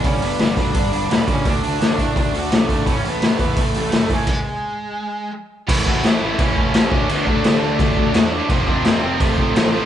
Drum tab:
CC |--------|--------|--------|x-------|
HH |oooooooo|oooooooo|oooooooo|--------|
SD |--o---o-|--o---o-|--o---o-|--------|
BD |o--oo--o|o--oo--o|o--oo--o|o-------|

CC |x-x-x-x-|x-x-x-x-|x-x-x-x-|
HH |--------|--------|--------|
SD |--o---o-|--o---o-|--o---o-|
BD |oo--oo-o|-o--oo--|oo--oo--|